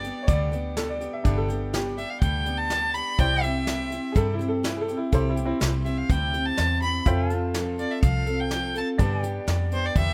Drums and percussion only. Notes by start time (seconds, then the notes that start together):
0.04 closed hi-hat
0.28 kick, closed hi-hat
0.53 closed hi-hat
0.77 snare, closed hi-hat
1.01 closed hi-hat
1.25 kick, closed hi-hat
1.49 closed hi-hat
1.74 snare, closed hi-hat
1.98 closed hi-hat
2.22 kick, closed hi-hat
2.46 closed hi-hat
2.70 snare, closed hi-hat
2.94 closed hi-hat
3.19 kick, closed hi-hat
3.43 closed hi-hat
3.67 snare, closed hi-hat
3.92 closed hi-hat
4.16 kick, closed hi-hat
4.40 closed hi-hat
4.64 snare, closed hi-hat
4.89 closed hi-hat
5.12 kick, closed hi-hat
5.37 closed hi-hat
5.61 snare, closed hi-hat
5.86 closed hi-hat
6.10 kick, closed hi-hat
6.34 closed hi-hat
6.57 snare, closed hi-hat
6.82 closed hi-hat
7.06 kick, closed hi-hat
7.30 closed hi-hat
7.54 snare, closed hi-hat
7.79 closed hi-hat
8.03 kick, closed hi-hat
8.27 closed hi-hat
8.51 snare, closed hi-hat
8.75 closed hi-hat
8.99 kick, closed hi-hat
9.23 closed hi-hat
9.48 snare, closed hi-hat
9.72 closed hi-hat
9.95 kick, closed hi-hat